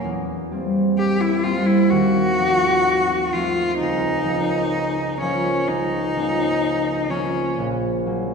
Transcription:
0.00 0.50 A#3 soft
0.04 1.95 E2 soft
0.51 1.43 G3 soft
0.51 1.43 A#3 soft
0.51 1.44 C4 soft
0.98 1.22 G4 medium
1.20 1.45 E4 medium
1.43 1.95 G3 soft
1.43 1.95 A#3 soft
1.43 2.39 C4 soft
1.43 1.68 F4 medium
1.66 1.91 E4 medium
1.90 3.84 D#2 medium
1.90 3.34 F#4 medium
2.38 3.33 F3 soft
2.38 3.33 A3 soft
2.43 3.33 C4 soft
3.33 4.24 F3 soft
3.33 3.84 A3 soft
3.33 3.84 C4 soft
3.33 3.78 F4 medium
3.79 5.68 C#2 medium
3.79 5.17 D#4 medium
4.24 5.20 F3 soft
4.24 5.21 A#3 soft
4.30 5.21 C#4 soft
5.21 6.15 F3 soft
5.21 6.15 A#3 soft
5.21 5.69 C#4 medium
5.21 6.16 C#4 soft
5.68 7.61 C#2 soft
5.68 7.11 D#4 medium
6.16 7.08 F3 soft
6.16 7.09 A#3 soft
6.16 7.10 C#4 soft
7.10 7.61 F3 soft
7.10 8.05 A#3 soft
7.10 7.57 C#4 medium
7.10 8.05 C#4 soft
7.58 8.34 A#1 medium
8.06 8.34 F#3 soft
8.06 8.34 A#3 soft
8.06 8.34 C#4 soft

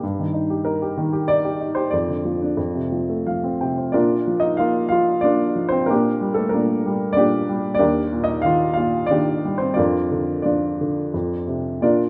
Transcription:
0.03 1.89 G2 soft
0.19 0.96 D#3 soft
0.33 0.64 D#4 soft
0.50 0.80 G4 soft
0.65 1.27 D#4 soft
0.65 1.30 A#4 medium
0.82 1.11 G4 soft
0.97 1.90 D#3 medium
1.13 1.43 G4 soft
1.28 1.59 D#4 soft
1.28 1.73 D5 medium
1.45 1.75 G4 soft
1.60 1.92 D#4 soft
1.75 1.92 G4 soft
1.75 1.92 C5 medium
1.91 2.56 F2 soft
1.91 3.21 D5 medium
2.09 2.57 D3 soft
2.25 2.57 F3 soft
2.42 2.58 D4 soft
2.57 3.89 F2 soft
2.75 3.59 C3 soft
2.92 3.25 F3 soft
3.09 3.92 A3 soft
3.27 3.92 F3 soft
3.27 3.58 F5 soft
3.44 3.93 C4 soft
3.61 3.93 C3 soft
3.61 3.92 G5 soft
3.78 3.94 C5 soft
3.92 5.86 A#2 soft
3.92 4.40 D4 medium
3.92 4.40 F4 soft
3.92 4.40 A#4 soft
3.92 4.39 D5 medium
4.27 4.90 F3 soft
4.40 4.58 D#4 medium
4.40 4.57 D#5 medium
4.57 5.23 A#3 soft
4.57 4.90 F4 medium
4.57 4.87 F5 medium
4.89 5.54 F3 soft
4.89 5.23 F4 medium
4.89 5.24 F5 medium
5.21 5.88 A#3 soft
5.21 5.70 D4 medium
5.21 5.70 F4 medium
5.21 5.73 D5 medium
5.56 5.88 F3 soft
5.69 5.88 C4 medium
5.69 5.88 C5 medium
5.86 6.51 A#2 medium
5.86 6.35 D4 medium
5.86 6.33 A#4 medium
5.90 6.35 A#3 medium
5.90 6.35 G4 medium
6.21 6.84 G3 soft
6.34 6.53 A3 soft
6.34 6.51 A4 medium
6.49 7.16 A#2 soft
6.49 7.13 A#3 soft
6.49 7.11 A#4 medium
6.54 7.14 D4 soft
6.86 7.48 G3 soft
7.13 7.62 D4 medium
7.13 7.60 D5 medium
7.17 7.80 A#2 soft
7.17 7.62 G4 medium
7.49 7.80 G3 soft
7.74 8.28 D5 medium
7.79 9.73 D#2 medium
7.79 8.25 D4 medium
7.79 8.25 G4 medium
7.79 8.25 A#4 medium
8.13 8.77 A#2 soft
8.24 8.43 D#5 medium
8.28 8.44 D#4 medium
8.42 9.09 D#3 soft
8.42 8.72 F5 medium
8.46 8.76 F4 medium
8.74 9.08 F4 medium
8.74 9.10 F5 medium
8.78 9.75 A#2 soft
9.06 9.57 D4 medium
9.06 9.55 D5 medium
9.11 9.76 D#3 soft
9.11 9.58 G4 medium
9.45 9.77 G3 soft
9.58 9.77 C4 soft
9.58 9.75 C5 medium
9.74 10.41 D4 soft
9.74 10.41 F4 medium
9.74 10.41 A#4 soft
9.74 10.41 D5 medium
9.78 11.11 F2 medium
10.12 10.79 D3 soft
10.42 11.12 F3 soft
10.42 11.44 D4 soft
10.42 11.44 F4 soft
10.42 11.43 D5 medium
10.81 11.14 D3 soft
11.14 11.80 F2 soft
11.47 11.80 C3 soft
11.81 12.10 A#2 soft
11.81 12.10 D4 medium
11.81 12.10 F4 soft
11.81 12.10 A#4 soft
11.81 12.10 D5 medium

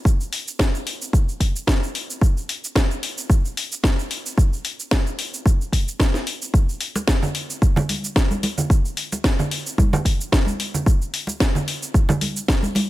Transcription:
0.05 kick loud
0.05 cabasa medium
0.21 cabasa soft
0.33 open hi-hat loud
0.48 cabasa medium
0.59 kick loud
0.59 snare loud
0.59 cabasa medium
0.75 cabasa soft
0.87 open hi-hat loud
1.02 cabasa medium
1.13 kick loud
1.13 cabasa medium
1.29 cabasa soft
1.40 kick medium
1.40 open hi-hat loud
1.56 cabasa medium
1.67 kick loud
1.67 snare loud
1.67 cabasa medium
1.83 cabasa soft
1.95 open hi-hat loud
2.10 cabasa medium
2.21 kick loud
2.21 cabasa soft
2.37 cabasa soft
2.49 open hi-hat loud
2.64 cabasa medium
2.76 kick loud
2.76 snare loud
2.76 cabasa medium
2.91 cabasa soft
3.03 open hi-hat loud
3.18 cabasa medium
3.30 kick loud
3.30 cabasa medium
3.45 cabasa soft
3.57 open hi-hat loud
3.72 cabasa medium
3.84 kick loud
3.84 snare loud
3.84 cabasa medium
3.99 cabasa soft
4.11 open hi-hat loud
4.26 cabasa medium
4.38 kick loud
4.38 cabasa medium
4.53 cabasa soft
4.65 open hi-hat loud
4.80 cabasa medium
4.91 kick loud
4.91 snare loud
4.91 cabasa medium
5.07 cabasa soft
5.19 open hi-hat loud
5.34 cabasa medium
5.46 kick loud
5.46 cabasa medium
5.61 cabasa soft
5.73 kick medium
5.73 open hi-hat loud
5.88 cabasa medium
6.00 kick loud
6.00 snare loud
6.00 cabasa medium
6.14 snare soft
6.14 cabasa soft
6.27 open hi-hat loud
6.42 cabasa medium
6.54 kick loud
6.54 cabasa medium
6.69 cabasa soft
6.81 open hi-hat loud
6.96 muted conga medium
6.96 cabasa medium
7.08 kick loud
7.08 snare loud
7.08 cabasa medium
7.22 low conga medium
7.22 cabasa soft
7.35 open hi-hat loud
7.50 cabasa medium
7.62 kick loud
7.62 cabasa medium
7.76 muted conga medium
7.76 low conga medium
7.76 cabasa soft
7.89 open hi-hat loud
7.89 high conga medium
8.04 cabasa medium
8.16 kick loud
8.16 snare loud
8.16 cabasa medium
8.31 high conga medium
8.31 cabasa soft
8.43 open hi-hat loud
8.43 muted conga soft
8.43 high conga medium
8.58 low conga medium
8.58 cabasa medium
8.70 kick loud
8.70 cabasa soft
8.85 cabasa soft
8.97 open hi-hat loud
9.12 muted conga medium
9.12 cabasa medium
9.24 kick loud
9.24 snare loud
9.24 cabasa medium
9.39 low conga medium
9.39 cabasa soft
9.51 open hi-hat medium
9.67 cabasa medium
9.78 kick loud
9.78 high conga medium
9.78 cabasa medium
9.93 muted conga medium
9.93 low conga medium
9.93 cabasa soft
10.05 kick medium
10.05 open hi-hat loud
10.21 cabasa medium
10.32 kick loud
10.32 snare loud
10.32 cabasa medium
10.46 high conga medium
10.46 cabasa soft
10.60 open hi-hat loud
10.74 low conga medium
10.74 cabasa medium
10.86 kick loud
10.86 cabasa medium
11.02 cabasa soft
11.14 open hi-hat loud
11.27 muted conga medium
11.27 cabasa medium
11.40 kick loud
11.40 snare loud
11.40 cabasa medium
11.55 low conga medium
11.55 cabasa soft
11.68 open hi-hat loud
11.83 cabasa medium
11.94 kick loud
11.94 cabasa medium
12.09 muted conga medium
12.09 low conga medium
12.09 cabasa soft
12.21 open hi-hat loud
12.21 high conga medium
12.37 cabasa medium
12.48 kick loud
12.48 snare loud
12.48 cabasa medium
12.63 high conga medium
12.63 cabasa soft
12.75 open hi-hat medium
12.75 muted conga medium
12.75 high conga medium

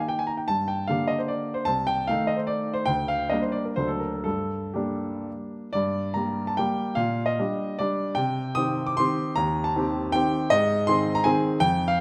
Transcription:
0.00 0.46 D#3 soft
0.00 0.46 A#3 soft
0.00 0.46 G4 medium
0.00 0.11 G#5 medium
0.09 0.20 G5 medium
0.19 0.30 G#5 medium
0.27 0.39 A#5 medium
0.37 0.49 G5 medium
0.48 0.88 G2 medium
0.48 0.68 A5 loud
0.68 0.89 G5 medium
0.87 1.66 D3 medium
0.87 1.65 A#3 medium
0.87 1.66 G4 medium
0.87 1.10 F5 medium
1.08 1.19 D#5 medium
1.19 1.30 C5 medium
1.28 1.56 D5 medium
1.54 1.68 C5 medium
1.65 2.07 C2 medium
1.65 1.87 A5 loud
1.87 2.09 G5 loud
2.07 2.86 D#3 medium
2.07 2.86 A3 medium
2.07 2.86 D#4 medium
2.07 2.29 F5 medium
2.27 2.39 D#5 medium
2.36 2.49 C5 medium
2.47 2.75 D5 medium
2.74 2.88 C5 medium
2.86 3.30 D2 medium
2.86 3.09 G5 loud
3.08 3.32 F5 medium
3.30 3.73 G3 soft
3.30 3.73 A#3 medium
3.30 3.73 D4 medium
3.30 3.43 D#5 medium
3.42 3.54 C5 medium
3.52 3.65 D5 medium
3.65 3.77 A#4 medium
3.76 4.24 D2 soft
3.76 4.21 F#3 soft
3.76 4.21 A3 soft
3.76 4.22 D4 soft
3.76 3.89 C5 medium
3.88 4.00 A4 medium
4.00 4.13 A#4 medium
4.14 4.22 A4 medium
4.24 4.75 G2 medium
4.24 4.75 A4 medium
4.74 5.70 G3 soft
4.74 5.69 A#3 soft
4.74 5.70 D4 medium
4.74 5.26 G4 medium
5.73 6.15 G2 medium
5.73 6.16 D5 medium
6.14 6.53 G3 soft
6.14 6.54 A#3 soft
6.14 6.54 G4 soft
6.14 6.46 A#5 medium
6.47 6.57 A5 medium
6.57 6.94 G3 medium
6.57 6.94 A#3 medium
6.57 6.94 G4 medium
6.57 6.97 G5 medium
6.95 7.37 A#2 medium
6.95 7.27 F5 medium
7.26 7.79 D#5 medium
7.39 7.77 G3 soft
7.39 7.77 D4 soft
7.39 7.77 G4 medium
7.79 8.14 G3 medium
7.79 8.14 D4 medium
7.79 8.14 G4 medium
7.79 8.17 D5 medium
8.15 8.56 C3 medium
8.15 8.56 G5 loud
8.55 8.94 D#3 medium
8.55 8.94 C4 medium
8.55 8.94 G4 medium
8.55 8.87 D#6 loud
8.87 8.97 D6 medium
8.97 9.33 D#3 medium
8.97 9.33 C4 medium
8.97 9.33 G4 medium
8.97 9.36 C6 loud
9.36 9.74 D#2 medium
9.36 9.64 A#5 loud
9.64 10.12 A5 medium
9.76 10.10 D#3 medium
9.76 10.10 C4 medium
9.76 10.11 G4 medium
10.12 10.47 D#3 medium
10.12 10.48 C4 medium
10.12 10.48 G4 medium
10.12 10.50 G5 loud
10.50 10.88 G#2 medium
10.50 10.88 D#5 loud
10.87 11.23 D#3 medium
10.87 11.23 C4 medium
10.87 11.23 G#4 medium
10.87 11.17 C6 loud
11.15 11.25 A#5 loud
11.24 11.58 D#3 medium
11.24 11.58 C4 medium
11.24 11.58 G#4 medium
11.24 11.61 G#5 loud
11.60 11.99 F2 medium
11.60 11.89 G5 loud
11.88 12.00 F5 loud

